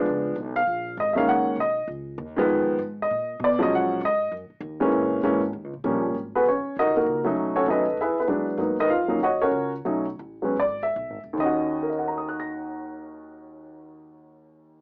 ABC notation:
X:1
M:4/4
L:1/8
Q:"Swing" 1/4=197
K:Ebm
V:1 name="Grand piano"
z3 f3 e [_f=f] | g2 e2 z4 | z3 e3 =d e | g2 e2 z4 |
z8 | z [CGAc] [Dd]2 [EGBe] [B,EGB]2 z | z [^C^F=A^c] [A=B^d]2 [=E^GB=e] [=B,EGB]2 z | z [EBce] [Ff]2 [Gdeg] [DGBd]2 z |
z4 =d =e2 z | z2 [Begbe'g'b']6- | [Begbe'g'b']8 |]
V:2 name="Grand piano"
[F,A,C=D]2 z4 z [E,A,B,_D]- | [E,A,B,D]2 z4 z [E,F,A,C]- | [E,F,A,C]2 z4 z [F,G,A,D]- | [F,G,A,D]2 z4 z [_F,A,B,D]- |
[_F,A,B,D]2 [F,A,B,D] z3 [=F,=G,B,D]2 | z6 z [G,=A,DE]- | [G,=A,DE]2 [^F,A,^C^D] z3 [G,^G,=B,=D]2 | [G,B,CE] z2 [G,B,DE] z4 |
[^F,=A,^C^D] z2 [F,_A,=B,C] z4 | [E,,E,DGe]8- | [E,,E,DGe]8 |]
V:3 name="Upright bass" clef=bass
D,,2 C,,2 B,,,2 A,,,2 | G,,, z C,,2 D,,2 E,,2 | F,, z A,,2 B,,2 C,2 | B,,2 A,,2 G,, z E,,2 |
B,,,2 A,,,2 (3E,, D,, B,,, B,,,2 | A,,,2 C,, z (3E,, D,, B,,, D,,2 | =B,,,2 ^D,,2 =E,, z G,, z | A,,2 F,,2 E,,2 D,,2 |
=B,,,2 =A,,,2 ^G,,,2 (3B,,, G,,, =E,,, | E,,8- | E,,8 |]